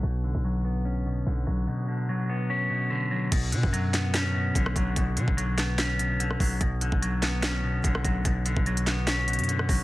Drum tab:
CC |--------------------------------|--------------------------------|x-------------------------------|--------------------------------|
HH |--------------------------------|--------------------------------|x---x---x---x---x-------x---x---|x---x---x---x---x---x---x---o---|
CP |--------------------------------|--------------------------------|------------x---x---------------|------------x---x---------------|
SD |--------------------------------|--------------------------------|------------o---o---------r-----|------------o---o---------r-----|
BD |--------------------------------|--------------------------------|o-----o-----------------o---o---|o-----o---------------------o---|

CC |--------------------------------|--------------------------------|
HH |x---x---x---x---x-------x---x---|x---x---x-x-x---x---xxxxx---o---|
CP |------------x---x---------------|------------x---x---------------|
SD |------------o---o---------r-----|------------o---o---------r-----|
BD |o-----o-----------------o---o---|o-----o---------------------o---|